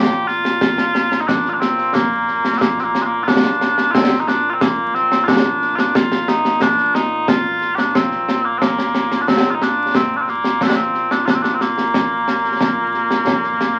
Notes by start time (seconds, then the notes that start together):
Already playing: A#2 A#3 F4 G4
0.27 F4, snare
0.45 snare
0.61 concert bass drum, snare
0.78 snare
0.95 snare
1.12 snare
1.21 D#4
1.27 D4, concert bass drum, snare
1.45 F4, snare
1.53 D4
1.60 C4, snare
1.78 snare
1.94 A#3, concert bass drum, snare
2.28 snare
2.45 snare
2.58 A#3 C4, concert bass drum, snare
2.79 C4, snare
2.84 A#3
2.95 snare
3.02 G#3
3.06 A#3
3.23 F4
3.27 D4, concert bass drum, snare
3.45 snare
3.61 snare
3.78 snare
3.91 C4 F4, concert bass drum, snare
4.20 D#4
4.28 D4, snare
4.50 C4 F4
4.61 A#3, concert bass drum, snare
4.94 C4, snare
5.12 snare
5.24 D4 F4
5.28 concert bass drum, snare
5.62 snare
5.75 D4 F4, snare
5.95 F4, concert bass drum, snare
6.12 snare
6.28 D#4, snare
6.45 snare
6.61 D4, concert bass drum, snare
6.78 snare
6.95 D#4, snare
7.28 F4, concert bass drum, snare
7.61 snare
7.75 G4, snare
7.79 D4
7.95 C4, concert bass drum, snare
8.11 snare
8.29 snare
8.45 A#3
8.58 A#3 C4, concert bass drum, snare
8.78 snare
8.94 snare
9.12 snare
9.22 D4
9.28 C4, concert bass drum, snare
9.51 D#4 F4
9.62 D4, snare
9.95 C4, concert bass drum, snare
10.17 D4
10.22 C4
10.28 A#3, snare
10.44 snare
10.61 C4, concert bass drum, snare
10.68 D4
10.76 C4
10.94 snare
11.11 D4, snare
11.25 F4, concert bass drum, snare
11.29 D4
11.35 C4
11.43 D4, snare
11.55 C4
11.61 A#3, snare
11.78 snare
11.94 concert bass drum, snare
12.28 snare
12.44 snare
12.60 concert bass drum, snare
12.94 snare
13.11 snare
13.27 concert bass drum, snare
13.44 snare
13.61 snare